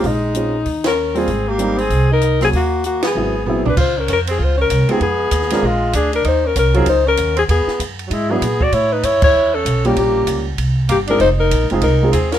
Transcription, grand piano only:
X:1
M:4/4
L:1/8
Q:"Swing" 1/4=194
K:Ab
V:1 name="Grand piano"
z2 [A,CDF] z4 [G,B,CF] | z2 [G,B,CE] z4 [_G,B,D_G] | z4 [_G,=B,C=E] z [G,B,CE] z | [K:Db] z6 z [A,_CEF=G] |
z3 [A,C=DFB] z4 | z3 [G,DEFB] z4 | z4 z [G,=B,=D=E^G] z2 | z6 z [=G,B,^CF=G] |
[=G,B,DF=G]3 z4 [A,CEFA] | z3 [A,CEFA] z [A,CEFA] z2 |]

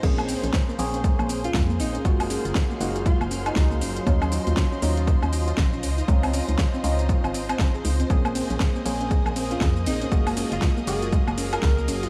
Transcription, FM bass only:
X:1
M:4/4
L:1/16
Q:"Swing 16ths" 1/4=119
K:Bbm
V:1 name="FM bass" clef=bass
B,,,2 z B,,, z2 B,,,2 z B,,,2 z F,,2 B,,, z | G,,,2 z G,,, z2 G,,,2 z G,,,2 z D,,2 G,,, z | E,,2 z E,, z2 E,,2 z E,,2 z B,,,2 D,, z | D,,2 z D,, z2 D,,2 z A,,,2 z A,,, z D,, z |
B,,,2 z B,,, z2 B,,,2 z B,,,2 z F,,2 B,,, z | G,,,2 z G,,, z2 G,,,2 z G,,,2 z D,,2 G,,, z |]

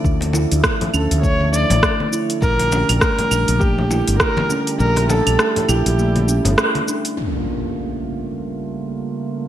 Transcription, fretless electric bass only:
X:1
M:4/4
L:1/16
Q:"Swing 16ths" 1/4=101
K:none
V:1 name="Fretless electric bass" clef=bass
D,,3 D,, z2 D,, D,,4 A,,, z4 | _B,,,3 B,,, z2 B,,, B,,,4 G,,, z4 | _B,,,3 B,,, z2 B,,, B,,,4 G,,, z4 | z16 |]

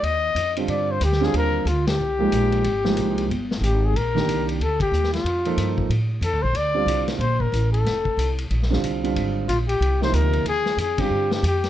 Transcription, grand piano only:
X:1
M:4/4
L:1/8
Q:"Swing" 1/4=184
K:Ablyd
V:1 name="Grand piano"
z3 [D,G,CF]3 z [D,G,CF]- | [D,G,CF]2 z3 [F,A,B,E]3 | z [F,A,B,E]3 z4 | z [E,B,DG]3 z4 |
z [F,B,E=A]3 z4 | z [D,G,CF]3 z4 | z4 z [D,G,CF]2 [D,G,CF]- | [D,G,CF]2 z3 [C,F,B,E]3 |
z3 [D,G,CF]3 z2 |]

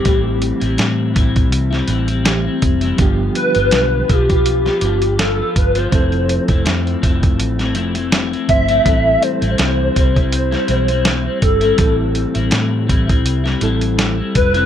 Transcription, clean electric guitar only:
X:1
M:4/4
L:1/16
Q:"Swing 16ths" 1/4=82
K:Am
V:1 name="Clean electric guitar"
[A,,E,G,CE]3 [G,CE] [A,,E,G,CE]2 [E,G,CE]3 [G,CE] [E,G,CE] [G,CE] [A,,E,G,CE] [G,CE]2 [G,CE] | [G,,D,F,B,F]3 [F,B,F] [G,,D,F,B,F]2 [D,F,B,F] [F,B,F]2 [F,B,F] [D,F,B,F]2 [G,,D,F,B,F] [F,B,F]2 [F,B,F] | [F,A,CE]3 [A,CE] [F,A,CE]2 [F,A,CE]3 [A,CE] [F,A,CE] [A,CE] [F,A,CE] [A,CE]2 [A,CE] | [A,,E,G,CE]3 [G,CE] [A,,E,G,CE]2 [E,G,CE] [G,CE]2 [G,CE] [E,G,CE] [G,CE] [A,,E,G,CE] [G,CE]2 [G,CE] |
[A,,E,G,CE]3 [G,CE] [A,,E,G,CE]2 [E,G,CE] [G,CE]2 [G,CE] [E,G,CE]2 [A,,E,G,CE] [G,CE]2 [G,CE] |]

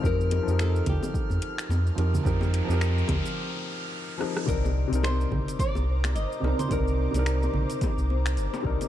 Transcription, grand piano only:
X:1
M:4/4
L:1/16
Q:"Swing 16ths" 1/4=108
K:Cm
V:1 name="Grand piano"
[F,CEGB]3 [F,CEGB]8- [F,CEGB]3 [F,CEGB]2 | [F,CEGB]3 [F,CEGB]8- [F,CEGB]3 [F,CEGB]2 | [C,CDEB]3 [C,CDEB]8- [C,CDEB]3 [C,CDEB]2 | [C,CDEB]3 [C,CDEB]8- [C,CDEB]3 [C,CDEB]2 |]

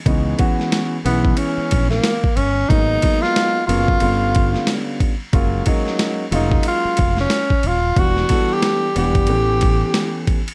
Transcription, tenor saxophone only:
X:1
M:4/4
L:1/16
Q:"Swing 16ths" 1/4=91
K:F#mix
V:1 name="Tenor saxophone"
z6 B,2 C3 A,3 C2 | D3 ^E3 E8 z2 | z6 D2 ^E3 C3 E2 | F3 =G3 G8 z2 |]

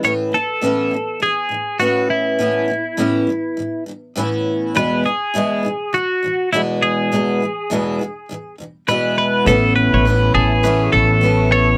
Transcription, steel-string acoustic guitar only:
X:1
M:4/4
L:1/8
Q:"Swing 16ths" 1/4=102
K:A
V:1 name="Steel-string acoustic guitar" clef=bass
[A,,E,B,CE] [A,,E,] [A,,E,B,CE] [A,,E,] [A,,E,] [A,,E,] [A,,E,B,CE]2 | [A,,E,B,CE] [A,,E,] [A,,E,B,CE] A,, [A,,E,] [A,,E,] [A,,E,B,CE]2 | [E,,B,,E,G,B,E] [E,,B,,E,] [E,,B,,E,G,B,E] [E,,B,,E,] [E,,B,,E,] [E,,B,,E,] [E,,B,,E,G,B,E]2 | [E,,B,,E,G,B,E] [E,,B,,E,] [E,,B,,E,G,B,E] [E,,B,,E,] [E,,B,,E,] [E,,B,,E,] [E,,B,,E,G,B,E]2 |
[A,,E,B,CE]2 [E,B,CE]2 [A,,E,B,CE]2 [E,B,CE]2 |]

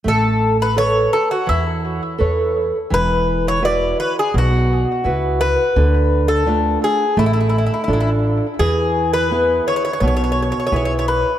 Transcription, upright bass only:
X:1
M:4/4
L:1/8
Q:1/4=84
K:A
V:1 name="Upright bass" clef=bass
A,,,4 E,,2 E,,2 | E,,,4 B,,,2 C,,2 | D,,4 A,,,2 A,,,2 | E,,4 B,,,2 B,,,2 |]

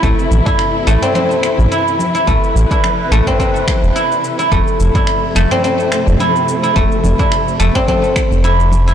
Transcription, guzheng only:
X:1
M:4/4
L:1/16
Q:"Swing 16ths" 1/4=107
K:Am
V:1 name="Guzheng"
A, z2 E z2 A, C C z3 E z2 E | A, z2 E z2 A, C C z3 E z2 E | A, z2 E z2 A, C C z3 E z2 E | A, z2 E z2 A, C C z3 E z2 E |]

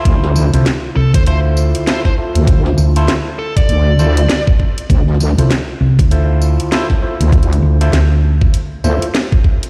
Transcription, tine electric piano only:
X:1
M:4/4
L:1/16
Q:"Swing 16ths" 1/4=99
K:Dm
V:1 name="Tine electric piano"
[EFAc]3 [EFAc] z4 [EFAc]4 [EFAc] z [EFAc]2- | [EFAc]3 [EFAc] z6 [EFAc] z4 z | z3 [EFAc] z4 [EFAc]4 [EFAc] z [EFAc]2- | [EFAc]3 [EFAc] z6 [EFAc] z4 z |]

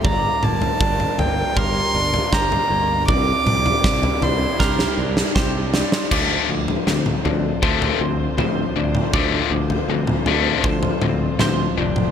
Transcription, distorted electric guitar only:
X:1
M:4/4
L:1/8
Q:1/4=79
K:Dm
V:1 name="Distorted electric guitar" clef=bass
z8 | z8 | [D,F,A,] [D,F,] [D,F,] [D,F,] [D,F,A,] [D,F,] [D,F,] [D,F,] | [D,F,A,] [D,F,] [D,F,] [D,F,A,] [D,F,] [D,F,] [D,F,] [D,F,] |]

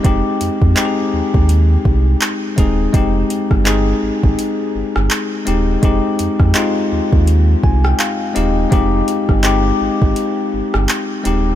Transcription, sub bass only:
X:1
M:4/4
L:1/16
Q:"Swing 16ths" 1/4=83
K:Fm
V:1 name="Sub bass" clef=bass
F,,, z F,, F,, z2 E,, E,,3 C,,2 z2 E,,,2 | F,,,2 z G,,,3 A,,, A,,, z2 G,,, G,,, z2 E,,,2 | F,,, z F,, F,, z2 E,, E,,3 C,,2 z2 E,,,2 | F,,,2 z G,,,3 A,,, A,,, z2 G,,, G,,, z2 E,,,2 |]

